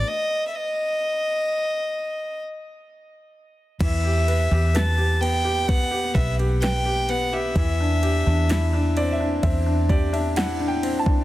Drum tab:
CC |----------------|x---------------|----------------|
RD |----------------|x-x-x-x-x-xxx-x-|x-x-x-x-x-xxx-x-|
SD |----------------|----o-------o---|----o-------o---|
BD |----------------|o-------o-o-----|o-------o-o----o|